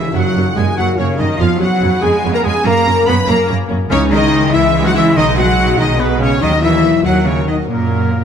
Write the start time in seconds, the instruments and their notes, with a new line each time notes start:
Already playing: harp C#3 C#4 G#4 C#5, trombone section C#3 G#3, cello section E3, french horn section E4, violin section E5, flute E5, trumpet section E5
0.13 double bass section F#2, harp F#2, cello section F#3, viola section A#3 C#4, trombone section A#3, french horn section F#4, clarinet F#4, violin section F#5, trumpet section F#5, flute F#5
0.35 double bass section F#2, viola section A#3 C#4, harp A#3
0.54 double bass section F#2, cello section G#3, viola section A#3 C#4, french horn section G#4, clarinet G#4, harp C#5, violin section G#5, trumpet section G#5, flute G#5
0.76 double bass section F#2, cello section F#3, viola section A#3 C#4, french horn section F#4, clarinet F#4, harp A#4, flute F#5, violin section F#5, trumpet section F#5
0.97 double bass section F#2, cello section C#3, viola section A#3 C#4, french horn section C#4, clarinet C#4, violin section C#5, trumpet section C#5, harp C#5, flute C#5
1.18 double bass section F#2, cello section D#3, viola section A#3 C#4, harp C#4, clarinet D#4, french horn section D#4, violin section D#5, trumpet section D#5, flute D#5
1.38 double bass section F2, trombone section C#3 B3, cello section F3, viola section B3 C#4, french horn section F4, clarinet F4, violin section F5, trumpet section F5, flute F5
1.59 double bass section F2, cello section F#3, viola section B3 C#4, harp B3, french horn section F#4, clarinet F#4, violin section F#5, flute F#5, trumpet section F#5
1.82 double bass section F2, viola section B3 C#4, harp C#5
2.01 double bass section F2, cello section G#3, viola section B3 C#4, clarinet G#4, french horn section G#4, harp B4, violin section G#5, trumpet section G#5, flute G#5
2.23 double bass section F2, viola section B3 C#4, harp C#5
2.33 cello section A#3, french horn section A#4, clarinet A#4, flute A#5, violin section A#5, trumpet section A#5
2.44 double bass section F2, cello section G#3, viola section B3 C#4, harp C#4, french horn section G#4, clarinet G#4, flute G#5, violin section G#5, trumpet section G#5
2.64 double bass section F#2, harp F#2, viola section A#3 C#4, cello section A#3, trombone section A#3, clarinet A#4, french horn section A#4, violin section A#5, flute A#5, trumpet section A#5
2.86 double bass section F#2, viola section A#3 C#4, harp A#3
3.06 double bass section F#2, viola section A#3 C#4, cello section B3, french horn section B4, clarinet B4, harp C#5, violin section B5, flute B5, trumpet section B5
3.27 double bass section F#2, viola section A#3 C#4, cello section A#3, clarinet A#4, harp A#4, french horn section A#4, violin section A#5, flute A#5, trumpet section A#5
3.47 double bass section F#2, viola section A#3 C#4, harp C#5
3.69 double bass section F#2, viola section A#3 C#4, harp C#4
3.90 double bass section C#2, cello section C#3, trombone section C#3 G#3, harp C#3, viola section E3 D#4, clarinet C#4, french horn section C#4, flute C#5, violin section C#5, trumpet section C#5
4.11 cello section D#3, viola section G#3 E4, harp G#3, clarinet D#4, french horn section D#4, flute D#5, trumpet section D#5, violin section D#5
4.33 viola section E3 D#4, harp C#5
4.53 double bass section C#2, cello section E3, viola section G#3 E4, clarinet E4, french horn section E4, harp G#4, violin section E5, flute E5, trumpet section E5
4.74 viola section E3 D#4, harp C#5
4.83 cello section F#3, french horn section F#4, clarinet F#4, flute F#5, violin section F#5, trumpet section F#5
4.94 cello section E3, viola section G#3 E4, harp C#4, french horn section E4, clarinet E4, flute E5, violin section E5, trumpet section E5
5.16 double bass section B1, harp B2, cello section D#3, viola section B3 D#4, clarinet D#4, french horn section D#4, trumpet section D#5, flute D#5, violin section D#5
5.36 cello section F#3, viola section G#3 B3, harp G#3, clarinet F#4, french horn section F#4, violin section F#5, trumpet section F#5, flute F#5
5.58 viola section B3 D#4
5.78 double bass section B1, trombone section B2, cello section D#3, viola section G#3 B3, clarinet D#4, french horn section D#4, harp G#4, trumpet section D#5, violin section D#5, flute D#5
5.98 cello section B2, french horn section B3, clarinet B3, viola section B3 D#4, violin section B4, flute B4, trumpet section B4
6.20 cello section C#3, viola section G#3 B3, harp B3, clarinet C#4, french horn section C#4, violin section C#5, flute C#5, trumpet section C#5
6.41 double bass section D#2, trombone section A#2 F#3, cello section D#3, viola section D#3 A#3, harp F#3, clarinet D#4, french horn section D#4, violin section D#5, flute D#5, trumpet section D#5
6.61 cello section E3, viola section F#3 D#4, french horn section E4, clarinet E4, violin section E5, trumpet section E5, flute E5
6.83 viola section D#3 A#3, harp A#4
7.03 double bass section D#2, trombone section A#2 F#3, viola section F#3 D#4, cello section F#3, french horn section F#4, clarinet F#4, harp F#4, flute F#5, violin section F#5, trumpet section F#5
7.24 cello section C#3, viola section D#3 A#3, french horn section C#4, clarinet C#4, harp A#4, violin section C#5, trumpet section C#5, flute C#5
7.36 trombone section B2
7.44 cello section D#3, viola section F#3 D#4, french horn section D#4, clarinet D#4, violin section D#5, trumpet section D#5
7.49 harp F#4, flute D#5
7.67 double bass section F#2, harp F#2, cello section A#2, trombone section C#3 F#3, viola section A#3, french horn section A#3, clarinet A#3, violin section A#4, trumpet section A#4, flute A#4
7.87 viola section F#3 C#4, harp C#4
8.10 viola section A#3, harp A#4